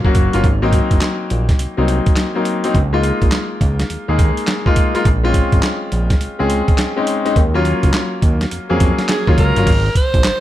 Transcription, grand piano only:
0.00 0.04 F#3 medium
0.00 0.05 A#3 medium
0.00 0.05 C#4 medium
0.00 0.34 F4 loud
0.04 0.21 F#3 medium
0.04 0.21 A#3 medium
0.04 0.21 C#4 medium
0.04 0.22 F#4 medium
0.33 0.44 F#3 medium
0.33 0.44 A#3 medium
0.33 0.44 C#4 medium
0.33 0.44 F4 medium
0.62 1.36 F#3 medium
0.62 1.37 A#3 medium
0.62 1.37 C4 medium
0.62 1.37 D#4 loud
1.77 2.13 F#3 medium
1.77 2.13 A#3 medium
1.77 2.14 C4 medium
1.77 2.14 D#4 medium
2.35 2.52 F#3 medium
2.35 2.52 A#3 medium
2.35 2.52 C4 medium
2.35 2.52 D#4 medium
2.64 2.74 F#3 medium
2.64 2.75 A#3 medium
2.64 2.75 C4 medium
2.64 2.75 D#4 medium
2.93 3.67 G#3 medium
2.93 3.67 A#3 medium
2.93 3.67 D#4 medium
2.93 3.68 F4 loud
4.08 4.44 G#3 medium
4.08 4.44 A#3 medium
4.08 4.44 D#4 medium
4.08 4.45 G#4 medium
4.66 4.83 G#3 medium
4.66 4.83 A#3 medium
4.66 4.83 D#4 medium
4.66 4.83 F4 loud
4.95 5.05 G#3 medium
4.95 5.05 A#3 medium
4.95 5.06 D#4 medium
4.95 5.06 F4 medium
5.23 5.98 G#3 medium
5.23 5.98 C4 medium
5.23 5.98 C#4 medium
5.23 5.98 F4 loud
6.39 6.75 G#3 medium
6.39 6.75 C4 medium
6.39 6.75 C#4 medium
6.39 6.75 G#4 medium
6.96 7.13 G#3 medium
6.96 7.13 C4 medium
6.96 7.14 C#4 medium
6.96 7.14 D#4 medium
7.25 7.36 G#3 medium
7.25 7.36 C4 medium
7.25 7.36 C#4 medium
7.25 7.36 D#4 loud
7.54 8.29 F#3 medium
7.54 8.29 A#3 medium
7.54 8.29 C#4 medium
7.54 8.29 F4 loud
8.69 9.05 F#3 medium
8.69 9.06 A#3 medium
8.69 9.06 C#4 medium
8.69 9.06 G#4 medium
9.27 9.44 F#3 medium
9.27 9.44 A#3 medium
9.27 9.44 C#4 medium
9.27 9.44 F4 medium
9.56 9.67 F#3 medium
9.56 9.67 A#3 medium
9.56 9.67 C#4 medium
9.56 9.67 F4 medium

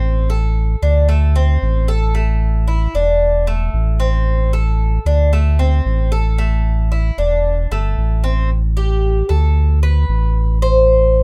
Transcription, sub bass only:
0.00 0.76 A1 medium
0.82 1.58 D2 loud
1.62 2.88 A1 loud
2.94 3.69 E1 loud
3.73 4.99 A1 loud
5.05 5.81 D2 medium
5.85 7.11 A1 medium
7.18 7.67 E1 loud
7.71 7.95 G1 medium
7.97 9.23 A1 medium
9.30 10.05 D2 medium
10.08 11.23 A1 loud

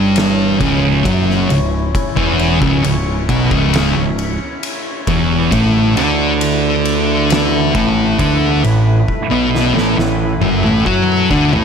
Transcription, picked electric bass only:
0.00 0.56 G1 medium
0.61 1.02 C#1 medium
1.05 1.47 F#1 loud
1.49 1.91 C#1 medium
2.17 2.59 E1 loud
2.62 2.82 C#1 medium
2.84 3.25 C#1 medium
3.29 3.50 B1 medium
3.51 3.93 C#1 medium
3.97 4.38 C#1 medium
5.07 5.49 E1 medium
5.52 5.93 A1 loud
5.96 7.71 D2 loud
7.75 8.16 A1 medium
8.20 8.61 D2 medium
8.64 9.05 A1 medium
9.31 9.72 B1 medium
9.75 9.96 A1 medium
9.97 10.39 A1 medium
10.41 10.62 F#1 medium
10.64 10.85 A1 medium
10.86 11.28 F#2 loud
11.31 11.52 D2 medium
11.52 11.64 A1 loud

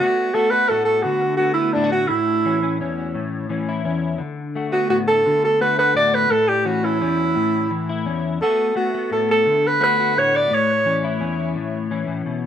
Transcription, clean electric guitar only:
0.01 0.34 A3 medium
0.01 1.38 B3 medium
0.34 1.39 A3 medium
0.34 0.52 F#4 medium
0.53 0.70 F#4 medium
0.70 1.05 A2 medium
0.70 1.75 F#4 medium
1.04 2.10 D3 medium
1.39 4.55 A3 medium
1.39 1.56 B3 medium
1.58 2.10 B3 medium
1.75 2.08 A2 medium
1.75 1.84 E4 medium
1.84 2.10 F#4 medium
2.10 2.80 A2 medium
2.45 3.48 E3 medium
2.45 2.62 C#4 medium
2.63 2.80 C#4 medium
2.81 3.15 E2 medium
2.81 3.49 C#4 medium
3.15 3.85 A2 medium
3.49 4.18 E3 medium
3.49 3.84 C#4 medium
3.69 4.21 E4 medium
3.85 4.20 E2 medium
3.85 4.18 C#4 medium
4.18 5.24 D3 medium
4.55 5.60 A3 medium
4.55 5.60 F#4 medium
4.72 4.89 B3 medium
4.89 5.25 A2 medium
4.89 6.30 B3 medium
5.26 6.31 D3 medium
5.61 8.41 A3 medium
5.61 5.77 F#4 medium
5.79 5.94 F#4 medium
5.94 6.29 A2 medium
5.94 6.28 F#4 medium
6.30 7.00 A2 medium
6.65 7.69 E3 medium
6.65 6.82 C#4 medium
6.83 7.00 C#4 medium
7.01 7.36 E2 medium
7.01 7.70 C#4 medium
7.35 8.05 A2 medium
7.70 8.38 E3 medium
7.70 muted clean electric guitar stroke medium
7.89 8.41 E4 medium
8.05 8.40 E2 medium
8.05 8.39 C#4 medium
8.41 8.75 A3 medium
8.41 8.75 B3 medium
8.41 9.12 F#4 medium
8.41 muted clean electric guitar stroke medium
8.75 9.80 A3 medium
8.75 8.93 B3 medium
8.94 10.51 B3 medium
9.11 9.46 A2 medium
9.46 10.51 D3 medium
9.80 12.29 A3 medium
9.80 9.98 F#4 medium
10.00 10.16 F#4 medium
10.17 10.49 A2 medium
10.17 10.49 F#4 medium
10.50 11.21 A2 medium
10.85 11.90 E3 medium
10.85 11.19 C#4 medium
11.04 12.46 E4 medium
11.20 11.55 E2 medium
11.20 11.90 C#4 medium
11.55 12.06 A2 medium
11.91 12.46 E3 medium
11.91 12.46 C#4 medium
12.07 12.25 A2 medium
12.26 12.43 B2 medium

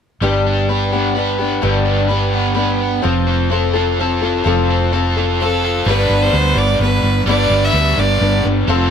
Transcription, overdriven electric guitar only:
0.22 1.40 G3 medium
0.46 1.64 D4 medium
0.69 1.14 B4 medium
0.92 1.37 B3 medium
1.15 2.07 B4 medium
1.38 2.32 B3 medium
1.62 2.81 G3 medium
1.85 3.04 D4 medium
2.09 2.54 B4 medium
2.33 2.80 B3 medium
2.55 3.03 B4 medium
2.81 3.04 B3 medium
3.04 4.22 F3 medium
3.27 4.45 C4 medium
3.51 4.00 A4 medium
3.75 4.24 F4 medium
4.01 4.92 A4 medium
4.25 5.16 F4 medium
4.47 5.64 F3 medium
4.70 5.87 C4 medium
4.93 5.41 A4 medium
5.18 5.63 F4 medium
5.42 5.88 A4 medium
5.64 5.87 F4 medium
5.86 7.25 G3 medium
5.86 7.27 B3 medium
5.86 7.26 D4 medium
5.86 7.27 B4 medium
7.26 8.66 G3 medium
7.26 8.67 B3 medium
7.26 8.66 D4 medium
7.26 8.67 B4 medium
8.68 8.90 F3 medium
8.68 8.90 A3 medium
8.68 8.90 C4 medium
8.68 8.90 F4 medium
8.68 8.90 A4 medium

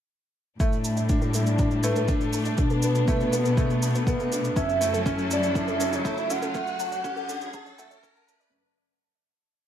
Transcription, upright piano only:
0.60 0.74 A3 medium
1.10 1.33 D4 medium
1.35 1.49 E4 medium
1.59 1.83 D4 medium
1.84 1.98 A3 medium
2.09 2.32 D4 medium
2.59 2.82 D4 medium
2.84 3.07 B3 medium
3.08 3.22 A3 medium
3.33 3.56 B3 medium
3.57 3.72 A3 medium
4.07 4.31 B3 medium
4.32 4.46 D4 medium
4.56 4.80 C#4 medium
4.81 4.95 A3 loud
5.06 5.30 C#4 loud
5.55 5.79 E4 medium
5.80 6.04 C#4 medium
6.05 6.19 A3 medium
6.30 6.54 C#4 medium
6.55 6.69 A3 medium
7.04 7.28 C#4 loud
7.29 7.44 D4 medium
7.53 7.78 C#4 medium
7.78 7.93 A3 loud
8.03 8.27 C#4 loud

